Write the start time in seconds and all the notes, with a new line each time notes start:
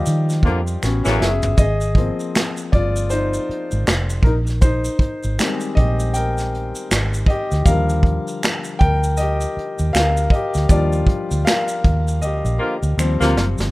Already playing: F3 G3 D#4 F4 G4 C5 D5 D#5 F5
0.06 D#3, closed hi-hat, maracas
0.29 snare, maracas
0.43 F2 D3 F3 A#3 F4, kick, closed hi-hat
0.67 maracas
0.83 A1 B3 C#4 F#4, finger snap, snare, maracas
1.05 A1 F#2 C#3 E3 C#4, snare, maracas
1.19 F#1 G#4 E5, snare
1.42 G1, floor tom, maracas
1.57 G#1 G#4 D#5, kick, closed hi-hat, maracas
1.81 maracas
1.95 F3 A#3 C4, kick, closed hi-hat
2.20 maracas
2.35 finger snap, snare, closed hi-hat, maracas
2.37 finger snap
2.57 maracas
2.72 G1 F4 D5, kick, closed hi-hat
2.96 maracas
3.10 D#4 C5, closed hi-hat, maracas
3.34 maracas
3.49 muted fingered electric bass stroke, closed hi-hat
3.71 G#1, maracas
3.87 F1, finger snap, snare, closed hi-hat, maracas
3.89 finger snap
4.10 maracas
4.23 A#1 D#4 A#4, kick, closed hi-hat
4.47 snare, maracas
4.61 D#4 C5, kick, closed hi-hat, maracas
4.84 maracas
4.99 kick, closed hi-hat
5.23 G#1, maracas
5.39 D#3 G3 G#3 C4, finger snap, snare, closed hi-hat, maracas
5.41 finger snap
5.60 maracas
5.75 A#1 G4 D#5, kick, closed hi-hat
6.00 maracas
6.14 A#4 G5, closed hi-hat, maracas
6.38 snare, maracas
6.55 closed hi-hat
6.75 maracas
6.91 G#1, finger snap, snare, closed hi-hat, maracas
7.14 maracas
7.26 G4 D#5, kick, closed hi-hat
7.51 D2, snare, maracas
7.65 D#2 D3 F3 G3 A#4 F5, kick, closed hi-hat, maracas
7.89 maracas
8.03 kick, closed hi-hat
8.28 maracas
8.43 finger snap, snare, closed hi-hat, maracas
8.45 finger snap
8.64 maracas
8.79 D2 A#4 G5, kick, closed hi-hat
9.03 maracas
9.17 G4 D#5, closed hi-hat, maracas
9.41 maracas
9.57 muted fingered electric bass stroke, closed hi-hat
9.79 D#2, maracas
9.93 D2 A#4 F5, finger snap, snare, closed hi-hat, maracas
9.97 finger snap
10.17 maracas
10.30 D#5, kick, closed hi-hat
10.35 G4
10.54 D2, snare, maracas
10.69 D#2 F3 G3 D4 F4 D5, kick, closed hi-hat, maracas
10.93 maracas
11.07 kick, closed hi-hat
11.31 D2, maracas
11.45 A#4 F5, finger snap, snare, closed hi-hat, maracas
11.68 maracas
11.84 D#2, kick, closed hi-hat
12.08 maracas
12.22 D2 G4 D#5, maracas
12.45 A#1, maracas
12.59 D3 F3 A#3 F4
12.83 D2, maracas
12.98 D#2 F3 G3 C4, finger snap, maracas
13.20 D2 C3 F3 A#3 F4, snare, maracas
13.36 F#1, snare
13.58 G1, snare, maracas